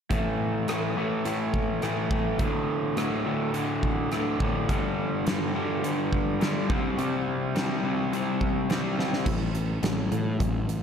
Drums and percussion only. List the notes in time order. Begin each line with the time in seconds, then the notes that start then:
0.11 kick, closed hi-hat
0.68 cross-stick, closed hi-hat
1.25 closed hi-hat
1.54 kick
1.82 cross-stick, closed hi-hat
2.11 kick
2.39 kick, closed hi-hat
2.97 cross-stick, closed hi-hat
3.54 closed hi-hat
3.83 kick
4.12 cross-stick, closed hi-hat
4.40 kick
4.69 kick, closed hi-hat
5.27 snare, closed hi-hat
5.84 closed hi-hat
6.13 kick
6.41 snare, closed hi-hat
6.70 kick
6.99 closed hi-hat
7.56 snare, closed hi-hat
8.13 closed hi-hat
8.41 kick
8.70 snare, closed hi-hat
8.99 snare
9.13 snare
9.26 kick, crash
9.55 closed hi-hat
9.83 snare, closed hi-hat
10.12 closed hi-hat
10.40 kick, closed hi-hat
10.69 closed hi-hat